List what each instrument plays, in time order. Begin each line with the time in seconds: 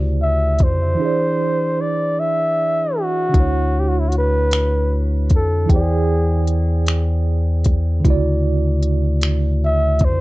Already playing: analog synth bass D2, tine electric piano C#3 D3 E4 F#4 D5
0.23 flugelhorn E5
0.59 analog synth bass F2, kick, closed hi-hat
0.63 flugelhorn C5
0.95 tine electric piano E3 E4
0.99 tine electric piano D4 G#4 C5
1.05 tine electric piano D5
1.81 flugelhorn D5
2.20 flugelhorn E5
3.00 flugelhorn F#4
3.29 tine electric piano D3 D4
3.34 analog synth bass D2, tine electric piano E4 F#4, kick, closed hi-hat
3.40 tine electric piano C#5
3.79 flugelhorn G4
3.89 flugelhorn F#4
4.00 flugelhorn E4
4.09 flugelhorn F#4, closed hi-hat
4.18 flugelhorn B4
4.51 finger snap, closed hi-hat
5.30 analog synth bass F2, kick, closed hi-hat
5.35 flugelhorn A4
5.66 tine electric piano E3 E4 G5, kick, closed hi-hat
5.70 analog synth bass E2, tine electric piano G#4 C5, flugelhorn G#4
5.76 tine electric piano D5
6.47 closed hi-hat
6.87 finger snap, closed hi-hat
7.64 kick, closed hi-hat
8.00 tine electric piano C#3 D3
8.05 analog synth bass D2, tine electric piano E4 F#4, kick, closed hi-hat
8.10 tine electric piano D5
8.83 closed hi-hat
9.21 finger snap, closed hi-hat
9.65 flugelhorn E5
9.99 analog synth bass F2, kick, closed hi-hat
10.05 flugelhorn C5